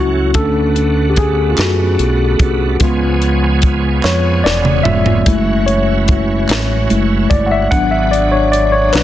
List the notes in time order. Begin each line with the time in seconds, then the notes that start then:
Already playing: C#2 F#3 A3 C#4 E4 F#4
0.34 D2 C#3 A3 B3 C#4 D4 F#4 A4, kick, closed hi-hat
0.42 D3
0.76 closed hi-hat
1.10 G4
1.16 G#4, kick, closed hi-hat
1.51 F4
1.57 F#2 F#4, snare, clap, closed hi-hat
1.99 B1, closed hi-hat
2.39 C2, kick, closed hi-hat
2.80 C#2 F3 G#3 B3 C#4 F4 G#4, kick, closed hi-hat
3.22 closed hi-hat
3.62 kick, closed hi-hat
4.03 F2 C#5, snare, clap
4.44 E1 D5, snare
4.65 mid tom
4.83 F1 G#3 B3 F4 E5, floor tom
5.06 floor tom
5.26 F#1 E3 F#3 G#3 A3 C#4 E4 G#4, kick, closed hi-hat
5.33 F#4
5.66 C#5, closed hi-hat
6.08 kick, closed hi-hat
6.49 A1, snare, clap, closed hi-hat
6.90 F#1 G#3 A3 E4, closed hi-hat
7.30 G1 D5, kick, closed hi-hat
7.46 F#5
7.51 E5
7.71 G#1 F#3 G#3 B3 D4 F#4 B4 F#5, kick, closed hi-hat
7.91 E5
8.11 D5, closed hi-hat
8.32 C#5
8.52 D5, closed hi-hat
8.72 C#5
8.93 B1 F#3 B3 D4 B4, snare, clap, closed hi-hat